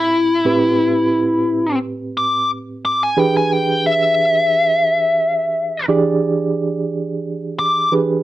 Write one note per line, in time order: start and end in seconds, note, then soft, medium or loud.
0.00 0.41 A2 medium
0.00 0.41 C4 medium
0.00 1.78 E4 medium
0.00 0.42 G4 medium
0.00 0.42 B4 medium
0.45 3.13 A2 medium
0.45 3.13 C4 medium
0.45 3.13 G4 medium
0.45 3.13 B4 medium
2.18 2.49 D6 loud
2.85 3.01 D6 medium
3.03 3.19 G#5 medium
3.17 5.84 E3 medium
3.17 5.84 D4 medium
3.17 5.84 G4 medium
3.17 5.84 G#4 medium
3.17 5.85 B4 medium
3.17 3.35 G5 medium
3.37 3.53 G#5 medium
3.53 3.85 G5 loud
3.86 5.85 E5 medium
5.88 7.88 E3 medium
5.88 7.88 D4 medium
5.88 7.88 G4 medium
5.88 7.88 G#4 medium
5.88 7.88 D5 medium
7.59 7.91 D6 loud
7.92 8.23 E3 soft
7.92 8.23 D4 soft
7.92 8.23 G4 soft
7.92 8.23 G#4 soft
7.92 8.23 B4 medium